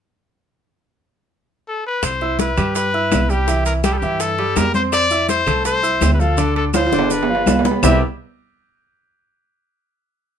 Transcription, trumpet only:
1.69 1.85 A4 medium
1.86 2.06 B4 medium
2.04 2.40 C5 medium
2.40 2.73 B4 medium
2.76 3.32 B4 loud
3.30 3.65 G4 medium
3.66 3.74 A#4 medium
3.85 3.94 G4 medium
3.93 3.99 A4 medium
3.98 4.22 G4 medium
4.20 4.59 A4 loud
4.57 4.74 A#4 loud
4.75 4.83 C5 medium
4.93 5.27 D5 loud
5.29 5.63 C5 loud
5.66 6.10 C5 loud
6.14 6.21 B4 medium
6.20 6.56 A4 medium
6.57 6.65 A4 medium
6.75 7.13 C5 loud
7.12 7.66 B4 medium
7.84 8.01 E5 medium

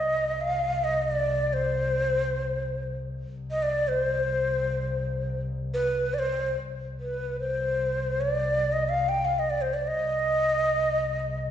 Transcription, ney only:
0.00 0.42 D#5 medium
0.41 0.86 F5 medium
0.84 1.04 D#5 medium
1.02 1.55 D5 medium
1.53 2.95 C5 medium
3.51 3.64 D#5 medium
3.63 3.90 D5 medium
3.88 5.39 C5 medium
5.74 6.15 B4 medium
6.14 6.20 D5 medium
6.19 6.55 C5 medium
7.00 7.37 B4 medium
7.40 8.22 C5 medium
8.21 8.74 D5 medium
8.73 8.91 D#5 medium
8.89 9.10 F5 medium
9.09 9.26 G5 medium
9.25 9.40 F5 medium
9.39 9.52 D#5 medium
9.50 9.63 D5 medium
9.61 9.75 C5 medium
9.74 9.89 D5 medium
9.88 11.51 D#5 medium

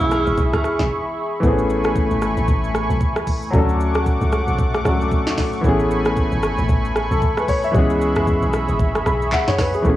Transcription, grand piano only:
0.00 1.38 E3 medium
0.00 1.38 G#3 medium
0.00 1.39 B3 medium
0.00 1.40 C#4 medium
0.00 1.41 G#4 medium
1.40 3.48 E3 medium
1.40 3.49 A3 medium
1.40 3.50 B3 medium
1.45 1.52 C4 medium
1.45 3.52 G#4 medium
1.52 3.53 C#4 medium
3.51 4.81 F#3 medium
3.51 4.82 A3 medium
3.51 4.83 C#4 medium
3.56 4.84 D4 medium
3.56 4.85 A4 medium
4.84 5.64 F#3 medium
4.84 5.62 A3 medium
4.84 5.64 C#4 medium
4.84 5.65 D4 medium
4.84 5.65 A4 medium
5.61 7.69 E3 medium
5.61 7.70 A3 medium
5.61 7.71 B3 medium
5.67 7.72 C#4 medium
5.67 6.95 G#4 medium
7.12 7.36 A4 medium
7.38 7.48 B4 medium
7.49 7.63 C#5 medium
7.64 7.89 E5 medium
7.71 9.80 E3 medium
7.71 9.80 G#3 medium
7.71 9.81 B3 medium
7.77 9.82 C#4 medium
7.77 9.31 G#4 medium
9.07 9.31 B5 medium
9.33 9.47 E5 medium
9.33 9.82 F#5 medium
9.48 9.59 C#5 medium
9.59 9.74 B4 medium
9.75 9.88 G#4 medium
9.82 9.96 E3 medium
9.82 9.96 A3 medium
9.82 9.96 B3 medium
9.88 9.96 C#4 medium
9.88 9.96 G#4 medium

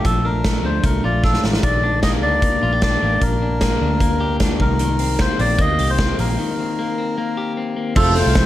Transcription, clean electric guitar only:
0.00 0.43 A3 soft
0.00 0.24 D4 medium
0.00 1.03 F4 medium
0.05 1.63 F3 medium
0.25 0.64 D4 soft
0.45 0.83 A3 soft
0.64 1.23 D4 soft
0.84 1.43 A3 medium
1.04 1.67 F4 medium
1.24 1.83 D4 medium
1.44 1.67 A3 soft
1.63 3.45 D#3 medium
1.83 2.22 D4 medium
2.03 2.43 A#3 soft
2.23 2.81 D4 medium
2.43 3.02 A#3 medium
2.63 2.73 F4 medium
2.73 4.19 G4 medium
2.83 3.41 D4 medium
3.02 3.61 A#3 soft
3.42 3.80 D4 medium
3.62 4.01 A#3 medium
3.81 4.39 D4 soft
4.01 5.03 A#3 medium
4.20 5.79 G4 medium
4.41 4.64 D4 medium
4.60 4.79 D#3 medium
4.80 6.38 D#3 medium
5.00 5.39 C4 soft
5.19 5.58 A#3 medium
5.39 5.99 C4 medium
5.59 6.18 A#3 medium
5.79 7.36 G4 medium
5.99 6.59 C4 medium
6.19 6.78 A#3 medium
6.39 7.97 D#3 medium
6.59 6.98 C4 soft
6.79 7.16 A#3 medium
6.98 7.57 C4 medium
7.18 7.75 A#3 medium
7.37 7.96 G4 medium
7.57 8.16 C4 medium
7.76 7.96 A#3 soft
7.96 8.35 A3 medium
7.96 8.46 F4 medium
8.16 8.46 C4 medium
8.36 8.46 A3 medium

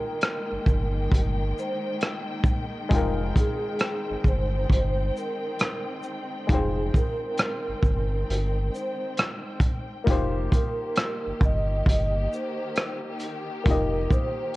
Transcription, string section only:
0.00 10.03 D#3 medium
0.00 10.03 G#3 medium
0.00 2.87 A#3 medium
0.00 10.03 G5 medium
2.91 10.04 C4 medium
10.07 14.56 D#3 medium
10.07 14.56 A#3 medium
10.07 14.56 G4 medium

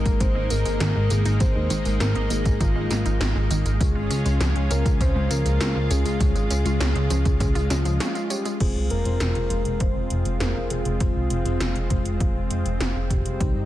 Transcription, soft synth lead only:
0.00 0.22 A#4 loud
0.21 0.52 C5 loud
0.50 1.12 A#4 loud
1.11 1.40 G#4 loud
1.41 1.97 C5 loud
2.00 2.32 A#4 loud
2.31 2.62 G#4 loud
2.60 3.50 F4 medium
3.81 4.67 G#4 loud
4.71 4.84 A#4 loud
5.01 5.32 C5 loud
5.31 5.90 A#4 loud
5.91 7.67 G#4 loud
7.71 8.27 F4 loud
8.31 8.44 G4 medium
8.61 8.88 G#4 loud
8.91 9.82 A#4 loud
9.81 10.42 C5 loud
10.41 10.72 A#4 loud
10.71 11.02 G#4 medium
11.01 12.21 F4 loud
13.11 13.65 G4 loud

